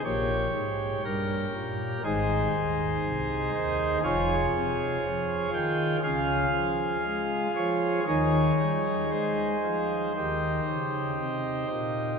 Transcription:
<<
  \new Staff \with { instrumentName = "Pipe organ" } { \time 4/4 \key aes \major \tempo 4 = 60 << { des''4 bes'4 c''4. c''8 | des''4. g''8 f''4. des''8 | des''4 c''2~ c''8 r8 | } \\ { g'2 <ees' aes'>2 | <f' aes'>2 <f' aes'>2 | <ees' aes'>2 <ees' g'>2 | } >> }
  \new Staff \with { instrumentName = "Pipe organ" } { \clef bass \time 4/4 \key aes \major <bes,, bes,>8 aes,8 g,8 bes,8 <aes,, aes,>8 ees,8 c,8 ees,8 | <f,, f,>8 c8 f8 ees8 <des, des>8 f8 aes8 f8 | <ees, ees>8 g8 aes8 f8 <ees, ees>8 des8 c8 bes,8 | }
>>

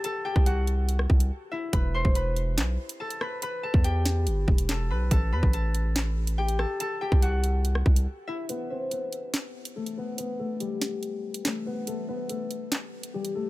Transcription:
<<
  \new Staff \with { instrumentName = "Harp" } { \time 4/4 \key g \major \tempo 4 = 142 <a' a''>8 <g' g''>8 <fis' fis''>2~ <fis' fis''>8 <e' e''>8 | <b' b''>8 <c'' c'''>8 <b' b''>2 <a' a''>8 <b' b''>8 | <b' b''>8 <a' a''>8 <g' g''>2 <a' a''>8 <b' b''>8 | <a' a''>8 <b' b''>8 <a' a''>2 <g' g''>8 <a' a''>8 |
<a' a''>8 <g' g''>8 <fis' fis''>2~ <fis' fis''>8 <e' e''>8 | <b b'>8 <c' c''>8 <b b'>2 <a a'>8 <b b'>8 | <b b'>8 <a a'>8 <g g'>2 <a a'>8 <b b'>8 | <a a'>8 <b b'>8 <a a'>2 <g g'>8 <a a'>8 | }
  \new Staff \with { instrumentName = "808-style bass" } { \clef bass \time 4/4 \key g \major r8. c,4.~ c,16 c,8 r4 | e,,8. e,,4~ e,,16 b,,8 r4. | r8. e,4~ e,16 g,,8 e,,4 b,,8 | a,,8 e,16 a,,2. r16 |
r8. c,4.~ c,16 c,8 r4 | r1 | r1 | r1 | }
  \new DrumStaff \with { instrumentName = "Drums" } \drummode { \time 4/4 hh8. bd16 hh8 hh8 hh16 ss16 bd16 hh16 r4 | <hh bd>8. bd16 hh8 hh8 <hc hh sn>8. hh16 r16 hh16 ss8 | hh8. bd16 hh8 <hh sn>8 hh8 bd16 hh16 <hc hh sn>4 | <hh bd>8. bd16 hh8 hh8 <hc hh sn>8. hh16 r16 hh16 ss8 |
hh8. bd16 hh8 hh8 hh16 ss16 bd16 hh16 r4 | hh4 hh8 hh8 <hc hh sn>8. hh16 r16 hh8. | hh4 hh8 <hh sn>8 hh8. hh16 <hc hh sn>4 | hh4 hh8 hh8 <hc hh sn>8. hh16 r16 hh8. | }
>>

